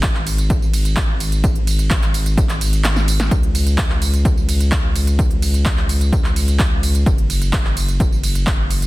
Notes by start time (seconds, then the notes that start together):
Already playing: G#1
0.03 kick, clap, closed hi-hat, tambourine
0.15 clap
0.27 open hi-hat, ride, tambourine
0.38 closed hi-hat, tambourine
0.50 kick, closed hi-hat, tambourine
0.62 tambourine
0.73 open hi-hat, ride, tambourine
0.85 closed hi-hat, tambourine
0.97 kick, clap, closed hi-hat, tambourine
1.20 open hi-hat, ride, tambourine
1.32 closed hi-hat, tambourine
1.44 kick, closed hi-hat, tambourine
1.56 closed hi-hat
1.67 open hi-hat, ride, tambourine
1.79 closed hi-hat, tambourine
1.91 kick, clap, closed hi-hat, tambourine
2.02 clap, closed hi-hat, tambourine
2.14 open hi-hat, ride, tambourine
2.26 closed hi-hat, tambourine
2.38 kick, closed hi-hat, tambourine
2.49 clap, closed hi-hat, tambourine
2.61 open hi-hat, ride, tambourine
2.73 closed hi-hat, tambourine
2.84 snare, clap, closed hi-hat, tambourine
2.96 snare, tambourine
3.08 open hi-hat, ride, tambourine
3.20 snare, closed hi-hat, tambourine
3.31 C#2, kick, closed hi-hat, tambourine
3.43 closed hi-hat
3.55 open hi-hat, ride, tambourine
3.67 closed hi-hat, tambourine
3.78 kick, clap, closed hi-hat, tambourine
3.90 clap
4.02 open hi-hat, ride, tambourine
4.14 closed hi-hat, tambourine
4.25 kick, closed hi-hat, tambourine
4.38 tambourine
4.49 open hi-hat, ride, tambourine
4.60 closed hi-hat, tambourine
4.72 kick, clap, closed hi-hat, tambourine
4.96 open hi-hat, ride, tambourine
5.07 closed hi-hat, tambourine
5.19 kick, closed hi-hat, tambourine
5.31 closed hi-hat
5.42 open hi-hat, ride, tambourine
5.54 closed hi-hat, tambourine
5.66 kick, clap, closed hi-hat, tambourine
5.77 clap
5.89 open hi-hat, ride, tambourine
6.01 closed hi-hat, tambourine
6.13 kick, closed hi-hat, tambourine
6.24 clap, tambourine
6.36 open hi-hat, ride, tambourine
6.48 closed hi-hat, tambourine
6.59 kick, clap, closed hi-hat, tambourine
6.83 open hi-hat, ride, tambourine
6.95 closed hi-hat, tambourine
7.06 F#1, kick, closed hi-hat, tambourine
7.18 closed hi-hat
7.30 open hi-hat, ride, tambourine
7.42 closed hi-hat, tambourine
7.53 kick, clap, closed hi-hat, tambourine
7.65 clap
7.77 open hi-hat, ride, tambourine
7.88 closed hi-hat, tambourine
8.00 kick, closed hi-hat, tambourine
8.12 tambourine
8.24 open hi-hat, ride, tambourine
8.35 closed hi-hat, tambourine
8.47 kick, clap, closed hi-hat, tambourine
8.71 open hi-hat, ride, tambourine
8.82 closed hi-hat, tambourine